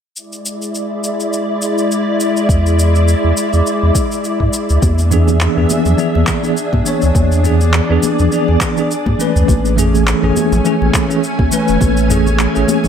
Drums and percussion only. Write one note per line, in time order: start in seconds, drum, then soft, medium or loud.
0.16 shaker soft
0.33 shaker soft
0.46 shaker medium
0.62 shaker soft
0.75 shaker soft
1.04 shaker medium
1.20 shaker soft
1.33 shaker soft
1.62 shaker medium
1.78 shaker soft
1.92 shaker soft
2.20 shaker medium
2.37 shaker soft
2.49 kick loud
2.49 shaker soft
2.66 shaker soft
2.79 shaker medium
2.95 shaker soft
3.08 shaker soft
3.37 shaker medium
3.53 shaker soft
3.67 shaker soft
3.95 kick loud
3.95 shaker medium
4.12 shaker soft
4.24 shaker soft
4.40 kick medium
4.53 shaker medium
4.69 shaker soft
4.82 kick loud
4.82 high conga medium
4.82 shaker soft
4.98 shaker soft
5.11 mid tom medium
5.11 shaker medium
5.27 high conga medium
5.27 shaker soft
5.41 clap medium
5.41 shaker soft
5.57 mid tom medium
5.70 high conga medium
5.70 shaker medium
5.85 low conga medium
5.85 shaker soft
5.98 shaker soft
6.15 high conga medium
6.27 kick medium
6.27 clap medium
6.27 shaker medium
6.44 shaker soft
6.57 shaker soft
6.73 kick medium
6.73 high conga medium
6.86 shaker medium
7.02 shaker soft
7.15 kick loud
7.15 high conga medium
7.15 shaker soft
7.32 shaker soft
7.44 mid tom medium
7.44 shaker medium
7.61 high conga medium
7.61 shaker soft
7.73 clap medium
7.73 shaker soft
8.03 high conga medium
8.03 shaker medium
8.19 low conga medium
8.19 shaker soft
8.32 shaker soft
8.48 high conga medium
8.61 kick loud
8.61 clap medium
8.61 shaker medium
8.77 shaker soft
8.91 shaker soft
9.06 kick medium
9.06 high conga medium
9.20 shaker medium
9.36 mid tom medium
9.36 shaker soft
9.48 kick loud
9.48 high conga medium
9.48 shaker soft
9.65 shaker soft
9.78 mid tom medium
9.78 shaker medium
9.93 high conga medium
9.93 shaker soft
10.07 clap medium
10.07 shaker soft
10.23 mid tom medium
10.36 high conga medium
10.36 shaker medium
10.52 low conga medium
10.52 shaker soft
10.65 shaker soft
10.82 high conga medium
10.94 kick loud
10.94 clap medium
10.94 shaker medium
11.11 shaker soft
11.24 shaker soft
11.39 kick loud
11.39 high conga medium
11.52 shaker medium
11.68 shaker soft
11.81 kick loud
11.81 high conga medium
11.81 shaker soft
11.97 shaker soft
12.10 mid tom medium
12.10 shaker medium
12.27 high conga medium
12.27 shaker soft
12.39 clap medium
12.39 shaker soft
12.56 shaker soft
12.68 high conga medium
12.68 shaker medium
12.84 low conga medium
12.84 shaker soft